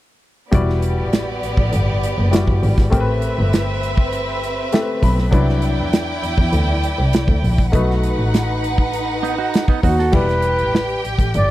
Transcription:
0.51 0.90 E1 medium
0.51 2.29 G3 medium
0.51 2.88 B3 medium
0.51 2.29 E4 medium
0.51 2.30 F#4 medium
0.51 2.88 G4 medium
0.51 2.88 D5 medium
0.51 2.30 D5 medium
0.51 kick loud
0.51 closed hi-hat medium
0.70 snare soft
0.82 closed hi-hat medium
0.99 1.10 A1 soft
1.13 snare medium
1.13 closed hi-hat medium
1.43 1.54 A1 soft
1.43 closed hi-hat medium
1.57 1.70 A1 medium
1.57 kick medium
1.73 1.98 G1 medium
1.73 closed hi-hat medium
2.03 closed hi-hat medium
2.18 2.30 F#1 medium
2.31 2.92 G3 soft
2.31 2.92 E4 soft
2.31 2.92 F#4 soft
2.31 2.93 D5 soft
2.31 snare loud
2.31 closed hi-hat medium
2.47 2.60 G1 medium
2.47 kick medium
2.63 2.88 G#1 medium
2.63 open hi-hat medium
2.78 kick medium
2.78 snare soft
2.90 3.18 A1 medium
2.90 4.68 A3 medium
2.90 4.69 C4 medium
2.90 5.29 C4 medium
2.90 4.69 G4 medium
2.90 2.99 A#4 medium
2.90 5.29 B4 medium
2.90 5.29 E5 medium
2.90 kick loud
2.90 closed hi-hat medium
3.00 4.73 B4 medium
3.22 closed hi-hat medium
3.39 4.54 G1 medium
3.53 snare medium
3.53 closed hi-hat medium
3.83 closed hi-hat medium
3.97 kick medium
4.13 closed hi-hat medium
4.44 closed hi-hat medium
4.72 5.33 A3 soft
4.72 5.33 C4 soft
4.72 5.33 G4 soft
4.72 4.80 A4 soft
4.72 5.01 E5 medium
4.72 snare medium
4.72 closed hi-hat medium
4.81 5.32 B4 medium
5.03 5.28 B1 medium
5.03 5.31 B5 medium
5.03 kick medium
5.03 open hi-hat medium
5.18 snare soft
5.31 5.70 C2 loud
5.31 7.68 F#3 medium
5.31 7.69 D4 medium
5.31 7.69 E4 medium
5.31 7.70 B4 medium
5.31 7.69 D5 medium
5.31 7.69 G5 medium
5.31 kick loud
5.31 closed hi-hat medium
5.49 snare soft
5.62 closed hi-hat medium
5.79 5.90 E2 soft
5.93 snare medium
5.93 closed hi-hat medium
6.23 6.34 E2 soft
6.23 closed hi-hat medium
6.38 6.51 E2 medium
6.38 kick medium
6.53 6.78 D2 medium
6.53 closed hi-hat medium
6.84 closed hi-hat medium
6.99 7.11 C2 medium
7.13 snare loud
7.13 closed hi-hat medium
7.28 7.41 D2 medium
7.28 kick medium
7.43 7.68 A#1 medium
7.43 open hi-hat medium
7.58 kick medium
7.71 7.98 B1 medium
7.71 10.09 A3 medium
7.71 10.09 D#4 medium
7.71 10.10 F#4 medium
7.71 10.09 B4 medium
7.71 10.11 B4 medium
7.71 10.09 F#5 medium
7.71 kick loud
7.71 closed hi-hat medium
7.91 snare soft
8.03 closed hi-hat medium
8.18 9.34 A1 medium
8.34 snare medium
8.34 closed hi-hat medium
8.64 closed hi-hat medium
8.78 kick medium
8.93 closed hi-hat medium
9.23 9.38 B3 soft
9.23 9.38 D#4 medium
9.23 closed hi-hat medium
9.38 9.67 D#4 medium
9.38 9.67 F#4 medium
9.54 snare medium
9.54 closed hi-hat medium
9.68 9.83 B3 medium
9.68 9.83 D#4 medium
9.68 kick medium
9.83 10.09 D#2 medium
9.83 9.98 D#4 medium
9.83 9.98 F#4 medium
9.83 10.16 F#4 medium
9.83 kick medium
9.83 open hi-hat medium
9.99 10.28 F#4 soft
9.99 10.28 A4 medium
9.99 snare soft
10.12 10.51 E1 medium
10.12 11.51 G3 medium
10.12 11.51 E4 medium
10.12 11.51 G4 medium
10.12 11.04 B4 medium
10.12 11.51 D5 medium
10.12 11.51 G5 medium
10.12 kick loud
10.12 crash medium
10.29 snare soft
10.29 closed hi-hat soft
10.42 closed hi-hat medium
10.58 10.71 A1 soft
10.58 closed hi-hat soft
10.75 snare medium
10.89 closed hi-hat soft
11.05 11.16 A1 soft
11.05 closed hi-hat medium
11.19 11.31 A1 medium
11.19 kick medium
11.19 closed hi-hat soft
11.34 11.51 G1 medium
11.34 11.51 D5 medium
11.34 closed hi-hat medium

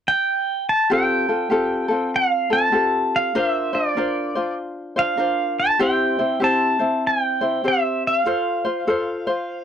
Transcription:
0.08 0.69 G5 medium
0.69 0.92 A5 medium
0.90 1.29 C4 medium
0.90 1.28 F4 medium
0.90 1.29 G4 medium
0.90 1.27 A4 medium
0.90 2.11 G5 medium
1.28 1.49 C4 soft
1.28 1.50 F4 soft
1.28 1.50 A4 soft
1.50 1.90 C4 soft
1.50 1.89 F4 medium
1.50 1.90 G4 medium
1.50 1.87 A4 medium
1.88 2.52 C4 soft
1.88 2.51 F4 soft
1.88 2.49 A4 medium
2.16 2.55 F5 medium
2.50 2.71 C4 soft
2.50 2.72 F4 soft
2.50 2.73 A4 soft
2.50 3.16 A5 loud
2.72 3.35 C4 medium
2.72 3.35 F4 soft
2.72 3.35 G4 medium
2.72 3.35 A4 medium
3.16 3.38 F5 medium
3.35 3.74 D4 medium
3.35 3.73 F4 medium
3.35 3.74 A#4 medium
3.35 3.72 C5 medium
3.35 3.77 E5 medium
3.73 3.96 D4 soft
3.73 3.97 F4 soft
3.73 3.96 C5 medium
3.73 4.54 D5 medium
3.97 4.36 D4 medium
3.97 4.36 F4 medium
3.97 4.36 A#4 medium
3.97 4.34 C5 medium
4.35 4.97 D4 soft
4.35 4.96 F4 soft
4.35 4.96 C5 soft
4.96 5.17 D4 soft
4.96 5.18 F4 soft
4.96 5.18 C5 soft
4.96 5.61 F5 medium
5.17 5.80 D4 medium
5.17 5.80 F4 medium
5.17 5.79 A#4 medium
5.17 5.80 C5 medium
5.60 5.82 A5 medium
5.79 6.19 C4 medium
5.79 6.18 E4 medium
5.79 6.19 G4 medium
5.79 6.17 C5 medium
5.79 6.44 G5 medium
6.19 6.40 C4 soft
6.19 6.40 E4 soft
6.19 6.41 C5 soft
6.40 6.80 C4 medium
6.40 6.79 E4 medium
6.40 6.79 G4 medium
6.40 6.78 C5 medium
6.40 7.06 A5 medium
6.79 7.42 C4 soft
6.79 7.42 E4 soft
6.79 7.41 C5 soft
7.07 7.68 G5 medium
7.41 7.63 C4 soft
7.41 7.63 E4 soft
7.41 7.64 C5 soft
7.64 8.26 C4 medium
7.64 8.25 G4 soft
7.64 8.27 C5 medium
7.68 8.03 E5 medium
8.07 9.64 F5 medium
8.26 8.65 F4 medium
8.26 8.65 A4 medium
8.26 8.63 C5 medium
8.65 8.87 F4 soft
8.65 8.87 C5 medium
8.87 9.27 F4 medium
8.87 9.27 A4 medium
8.87 9.26 C5 medium
9.27 9.64 F4 soft
9.27 9.64 C5 medium

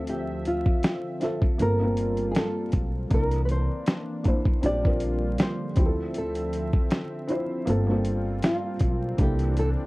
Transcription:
0.00 0.63 D2 loud
0.00 1.56 D3 medium
0.00 1.56 F3 medium
0.00 0.91 C4 medium
0.00 1.57 C4 medium
0.00 0.93 F4 medium
0.00 0.93 A4 medium
0.00 0.92 E5 medium
0.00 1.57 E5 medium
0.07 0.44 G4 medium
0.07 closed hi-hat medium
0.45 1.56 F4 medium
0.45 closed hi-hat medium
0.66 kick medium
0.83 finger snap medium
0.83 snare loud
0.83 closed hi-hat medium
1.20 1.57 C4 medium
1.20 1.58 F4 medium
1.20 1.58 E5 medium
1.20 snare soft
1.20 closed hi-hat medium
1.24 1.59 A4 medium
1.42 kick medium
1.58 2.32 G1 loud
1.58 3.10 G3 medium
1.58 1.76 A#3 medium
1.58 3.10 A#3 medium
1.58 1.77 C4 medium
1.58 4.60 C4 medium
1.58 3.10 F4 medium
1.58 1.77 F4 medium
1.58 2.31 A#4 loud
1.58 closed hi-hat medium
1.63 1.78 A4 medium
1.80 2.63 A#3 medium
1.80 2.63 C4 medium
1.80 2.64 F4 medium
1.84 2.65 A#4 medium
1.97 closed hi-hat medium
2.17 closed hi-hat soft
2.31 2.36 G#4 medium
2.31 closed hi-hat medium
2.36 3.14 A4 medium
2.36 finger snap medium
2.36 snare loud
2.72 3.08 B1 medium
2.72 kick loud
2.72 closed hi-hat medium
3.10 3.66 C2 loud
3.10 4.62 E3 medium
3.10 3.83 A#3 medium
3.10 4.62 A#3 medium
3.10 3.83 D4 medium
3.10 4.62 D4 medium
3.10 3.84 E4 medium
3.10 kick loud
3.10 closed hi-hat medium
3.14 3.45 A#4 medium
3.14 3.85 A#4 medium
3.31 closed hi-hat medium
3.45 3.50 B4 medium
3.45 closed hi-hat medium
3.51 4.65 C5 medium
3.86 finger snap medium
3.86 snare loud
3.86 closed hi-hat medium
4.24 4.60 A#3 medium
4.24 4.61 D4 medium
4.24 4.62 E4 medium
4.24 kick medium
4.24 closed hi-hat medium
4.28 4.63 C5 medium
4.45 kick loud
4.61 5.35 A#1 loud
4.61 7.64 D3 medium
4.61 7.64 F3 medium
4.61 5.76 G3 medium
4.61 5.76 A#3 medium
4.61 4.79 C4 medium
4.61 4.80 D4 medium
4.61 5.76 F4 medium
4.61 4.81 F4 medium
4.61 closed hi-hat medium
4.66 4.81 G4 medium
4.66 5.41 D5 loud
4.83 5.66 C4 medium
4.83 5.67 D4 medium
4.83 5.68 F4 medium
4.83 kick medium
4.87 5.69 A#4 medium
5.00 closed hi-hat medium
5.38 6.12 C5 medium
5.38 finger snap medium
5.38 snare loud
5.38 closed hi-hat medium
5.75 6.70 D2 medium
5.75 6.99 C4 medium
5.75 7.65 C4 medium
5.75 6.99 E4 medium
5.75 7.00 F4 medium
5.75 7.65 E5 medium
5.75 kick loud
5.75 closed hi-hat medium
5.79 5.86 G4 medium
5.86 7.04 A4 medium
6.14 6.88 A4 medium
6.14 closed hi-hat medium
6.35 closed hi-hat medium
6.53 closed hi-hat medium
6.73 kick medium
6.91 finger snap medium
6.91 snare loud
6.91 closed hi-hat medium
7.27 7.64 C4 medium
7.27 7.65 E4 medium
7.27 7.66 F4 medium
7.27 closed hi-hat medium
7.32 7.66 C5 loud
7.65 8.39 G1 loud
7.65 9.17 G3 medium
7.65 7.83 A#3 medium
7.65 9.87 A#3 medium
7.65 7.84 C4 medium
7.65 9.87 C4 medium
7.65 9.17 F4 medium
7.65 7.84 F4 medium
7.65 closed hi-hat medium
7.70 7.85 A4 loud
7.87 8.70 A#3 medium
7.87 8.71 C4 medium
7.87 8.72 F4 medium
7.91 8.72 A4 medium
8.05 closed hi-hat medium
8.42 9.21 F4 medium
8.42 finger snap medium
8.42 snare loud
8.42 closed hi-hat medium
8.79 9.16 B1 medium
8.79 kick loud
8.79 closed hi-hat medium
9.18 9.74 C2 loud
9.18 9.87 E3 medium
9.18 9.87 A#3 medium
9.18 9.87 D4 medium
9.18 9.87 E4 medium
9.18 9.59 G4 loud
9.18 kick loud
9.18 closed hi-hat medium
9.22 9.87 A4 medium
9.39 closed hi-hat soft
9.57 9.69 A4 medium
9.57 closed hi-hat medium

